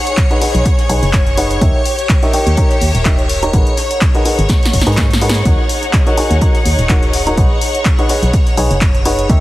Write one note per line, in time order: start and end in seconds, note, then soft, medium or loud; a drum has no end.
0.00 1.61 D#4 medium
0.00 1.61 G#4 medium
0.00 5.44 C#5 medium
0.00 9.40 C#5 medium
0.00 1.61 F#5 medium
0.00 5.44 C#6 medium
0.07 closed hi-hat medium
0.17 kick loud
0.17 snare loud
0.17 clap loud
0.17 closed hi-hat medium
0.30 0.40 D#4 medium
0.30 0.40 G#4 medium
0.30 0.40 B4 medium
0.30 0.40 C#5 medium
0.30 0.40 F#5 medium
0.30 snare soft
0.30 closed hi-hat soft
0.41 0.68 D#4 medium
0.41 0.68 G#4 medium
0.41 0.68 B4 medium
0.41 0.68 C#5 medium
0.41 0.68 F#5 medium
0.41 closed hi-hat medium
0.41 open hi-hat loud
0.55 0.64 B1 medium
0.55 closed hi-hat medium
0.65 kick loud
0.65 closed hi-hat medium
0.78 snare medium
0.78 closed hi-hat soft
0.89 1.00 B1 medium
0.89 1.07 D#4 medium
0.89 1.07 G#4 medium
0.89 1.07 B4 medium
0.89 1.07 C#5 medium
0.89 1.07 G#5 medium
0.89 closed hi-hat medium
0.89 open hi-hat loud
1.02 1.59 F#1 loud
1.02 snare soft
1.02 closed hi-hat soft
1.13 kick loud
1.13 snare loud
1.13 clap loud
1.13 closed hi-hat medium
1.27 closed hi-hat soft
1.37 1.58 D#4 medium
1.37 1.58 G#4 medium
1.37 1.58 B4 medium
1.37 1.58 C#5 medium
1.37 1.58 F#5 medium
1.37 snare soft
1.37 closed hi-hat medium
1.37 open hi-hat loud
1.50 closed hi-hat soft
1.50 closed hi-hat medium
1.61 1.72 D#2 loud
1.61 1.79 D#4 medium
1.61 1.79 G4 medium
1.61 3.54 G4 medium
1.61 1.79 A#4 medium
1.61 1.79 C#5 medium
1.61 1.79 E5 medium
1.61 kick loud
1.61 closed hi-hat medium
1.85 closed hi-hat medium
1.85 open hi-hat loud
1.96 4.31 A#4 medium
1.96 closed hi-hat medium
2.09 kick loud
2.09 snare loud
2.09 clap loud
2.09 closed hi-hat medium
2.23 2.32 D#4 medium
2.23 2.32 G4 medium
2.23 2.32 A#4 medium
2.23 2.32 C#5 medium
2.23 2.32 E5 medium
2.23 snare medium
2.23 closed hi-hat soft
2.33 2.54 D#4 medium
2.33 2.54 G4 medium
2.33 2.54 A#4 medium
2.33 2.54 C#5 medium
2.33 2.54 G5 loud
2.33 closed hi-hat medium
2.33 open hi-hat loud
2.47 2.56 D#2 loud
2.47 3.53 E5 medium
2.47 closed hi-hat medium
2.57 2.75 D#4 medium
2.57 2.75 G4 medium
2.57 2.75 A#4 medium
2.57 2.75 C#5 medium
2.57 2.75 A#5 medium
2.57 kick loud
2.57 closed hi-hat loud
2.57 closed hi-hat medium
2.70 snare soft
2.70 closed hi-hat soft
2.81 2.92 D#2 medium
2.81 closed hi-hat medium
2.81 open hi-hat loud
2.95 3.51 D#1 medium
2.95 snare soft
2.95 closed hi-hat medium
3.05 3.23 D#4 medium
3.05 3.23 G4 medium
3.05 3.23 A#4 medium
3.05 3.23 C#5 medium
3.05 3.23 E5 medium
3.05 kick loud
3.05 snare loud
3.05 clap loud
3.05 closed hi-hat medium
3.19 closed hi-hat soft
3.29 closed hi-hat medium
3.29 open hi-hat loud
3.42 3.52 D#4 medium
3.42 3.52 G4 medium
3.42 3.52 A#4 medium
3.42 3.52 C#5 medium
3.42 3.52 A#5 medium
3.42 snare soft
3.42 closed hi-hat medium
3.53 3.64 G#1 loud
3.53 3.71 D#4 medium
3.53 9.29 D#4 medium
3.53 3.71 G#4 medium
3.53 3.71 A#4 medium
3.53 3.71 B4 medium
3.53 3.71 F#5 medium
3.53 kick loud
3.53 closed hi-hat medium
3.67 closed hi-hat soft
3.77 9.29 G#4 medium
3.77 9.29 F#5 medium
3.77 snare medium
3.77 closed hi-hat medium
3.77 open hi-hat loud
3.91 closed hi-hat medium
4.01 kick loud
4.01 snare medium
4.01 clap loud
4.01 closed hi-hat medium
4.14 4.24 D#4 medium
4.14 4.24 G#4 medium
4.14 4.24 A#4 medium
4.14 4.24 B4 medium
4.14 4.24 F#5 medium
4.14 snare soft
4.14 closed hi-hat soft
4.25 4.52 D#4 medium
4.25 4.52 G#4 medium
4.25 4.52 A#4 medium
4.25 4.52 B4 medium
4.25 4.52 F#5 medium
4.25 closed hi-hat medium
4.25 open hi-hat loud
4.39 4.48 G#1 medium
4.39 closed hi-hat medium
4.49 kick loud
4.49 snare medium
4.49 closed hi-hat loud
4.49 closed hi-hat medium
4.62 snare soft
4.62 closed hi-hat soft
4.65 snare medium
4.73 4.84 G#1 medium
4.73 kick medium
4.73 snare medium
4.73 closed hi-hat medium
4.73 open hi-hat loud
4.80 snare medium
4.80 closed hi-hat medium
4.81 snare medium
4.86 5.43 G#2 loud
4.86 5.02 D#4 medium
4.86 5.02 G#4 medium
4.86 5.02 A#4 medium
4.86 5.02 B4 medium
4.86 5.02 G#5 loud
4.86 snare medium
4.86 closed hi-hat medium
4.92 snare medium
4.92 closed hi-hat medium
4.97 kick loud
4.97 snare loud
4.97 snare medium
4.97 clap loud
4.97 closed hi-hat medium
5.11 snare medium
5.11 closed hi-hat soft
5.21 5.39 D#4 medium
5.21 5.39 G#4 medium
5.21 5.39 A#4 medium
5.21 5.39 B4 medium
5.21 5.39 F#5 loud
5.21 snare soft
5.21 closed hi-hat medium
5.21 open hi-hat loud
5.29 snare loud
5.35 closed hi-hat medium
5.35 closed hi-hat soft
5.45 5.56 D#2 loud
5.45 5.63 D#4 medium
5.45 5.63 F#4 medium
5.45 5.63 A#4 medium
5.45 5.63 C#5 medium
5.45 9.40 C#5 medium
5.45 5.63 F#5 medium
5.45 9.40 C#6 medium
5.45 kick loud
5.45 closed hi-hat medium
5.69 closed hi-hat medium
5.69 open hi-hat loud
5.83 closed hi-hat medium
5.93 kick loud
5.93 snare loud
5.93 clap loud
5.93 closed hi-hat medium
6.06 6.16 D#4 medium
6.06 6.16 F#4 medium
6.06 6.16 A#4 medium
6.06 6.16 C#5 medium
6.06 6.16 F#5 medium
6.06 snare medium
6.06 closed hi-hat soft
6.17 6.38 D#4 medium
6.17 6.38 F#4 medium
6.17 6.38 A#4 medium
6.17 6.38 C#5 medium
6.17 6.38 G#5 loud
6.17 closed hi-hat medium
6.17 open hi-hat loud
6.31 6.40 D#2 loud
6.31 closed hi-hat medium
6.41 6.59 D#4 medium
6.41 6.59 F#4 medium
6.41 6.59 A#4 medium
6.41 6.59 C#5 medium
6.41 6.59 A#5 medium
6.41 kick loud
6.41 closed hi-hat medium
6.55 snare soft
6.55 closed hi-hat soft
6.65 6.76 D#2 medium
6.65 closed hi-hat medium
6.65 open hi-hat loud
6.78 7.35 D#1 medium
6.78 snare soft
6.78 closed hi-hat medium
6.89 7.07 D#4 medium
6.89 7.07 F#4 medium
6.89 7.07 A#4 medium
6.89 7.07 C#5 medium
6.89 7.07 F#5 medium
6.89 kick loud
6.89 snare loud
6.89 clap loud
6.89 closed hi-hat medium
7.03 closed hi-hat soft
7.13 closed hi-hat medium
7.13 open hi-hat loud
7.27 7.36 D#4 medium
7.27 7.36 F#4 medium
7.27 7.36 A#4 medium
7.27 7.36 C#5 medium
7.27 7.36 A#5 medium
7.27 snare soft
7.27 closed hi-hat medium
7.37 7.48 B1 loud
7.37 7.55 D#4 medium
7.37 7.55 G#4 medium
7.37 7.55 B4 medium
7.37 7.55 C#5 medium
7.37 7.55 F#5 medium
7.37 kick loud
7.37 closed hi-hat medium
7.61 closed hi-hat medium
7.61 open hi-hat loud
7.75 closed hi-hat medium
7.85 kick loud
7.85 snare loud
7.85 clap loud
7.85 closed hi-hat medium
7.99 8.08 D#4 medium
7.99 8.08 G#4 medium
7.99 8.08 B4 medium
7.99 8.08 C#5 medium
7.99 8.08 F#5 medium
7.99 snare soft
7.99 closed hi-hat soft
8.09 8.36 D#4 medium
8.09 8.36 G#4 medium
8.09 8.36 B4 medium
8.09 8.36 C#5 medium
8.09 8.36 F#5 medium
8.09 closed hi-hat medium
8.09 open hi-hat loud
8.23 8.32 B1 loud
8.23 closed hi-hat medium
8.33 kick loud
8.33 closed hi-hat medium
8.47 snare soft
8.47 closed hi-hat soft
8.57 8.68 B1 medium
8.57 8.75 D#4 medium
8.57 8.75 G#4 medium
8.57 8.75 B4 medium
8.57 8.75 C#5 medium
8.57 8.75 G#5 medium
8.57 closed hi-hat medium
8.57 open hi-hat loud
8.71 9.27 F#1 loud
8.71 snare soft
8.71 closed hi-hat medium
8.81 kick loud
8.81 snare loud
8.81 clap loud
8.81 closed hi-hat medium
8.95 closed hi-hat soft
9.05 9.26 D#4 medium
9.05 9.26 G#4 medium
9.05 9.26 B4 medium
9.05 9.26 C#5 medium
9.05 9.26 F#5 loud
9.05 snare soft
9.05 closed hi-hat medium
9.05 open hi-hat loud
9.18 closed hi-hat soft
9.18 closed hi-hat medium
9.29 9.40 D#2 loud
9.29 9.40 D#4 medium
9.29 9.40 G4 medium
9.29 9.40 A#4 medium
9.29 9.40 C#5 medium
9.29 9.40 E5 medium
9.29 kick loud
9.29 closed hi-hat medium